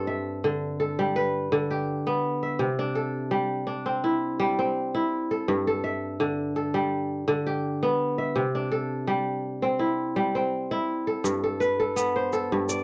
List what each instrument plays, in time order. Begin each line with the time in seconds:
Already playing: kora G2 C4 D4 G4 A4
0.07 kora E5
0.44 kora D3
0.80 kora A4
0.99 kora G3
1.16 kora B4
1.52 kora D3
1.71 kora G4
2.07 kora B3
2.43 kora E5
2.59 kora C3
2.79 kora D4
2.95 kora A4
3.31 kora G3
3.67 kora D4
3.86 kora C4
4.04 kora E4
4.40 kora G3
4.59 kora C4
4.95 kora E4
5.31 kora A4
5.48 kora G2
5.67 kora A4
5.84 kora E5
6.20 kora D3
6.56 kora A4
6.74 kora G3
7.28 kora D3
7.46 kora G4
7.83 kora B3
8.18 kora E5
8.36 kora C3
8.55 kora D4
8.72 kora A4
9.07 kora G3
9.62 kora C4
9.79 kora E4
10.16 kora G3
10.35 kora C4
10.71 kora E4
11.07 kora A4
11.24 kora G2, shaker
11.44 kora A4
11.60 kora B4, shaker
11.80 kora A4
11.96 kora B3, shaker
12.16 kora C5
12.33 kora A4, shaker
12.52 kora G2
12.69 kora D5, shaker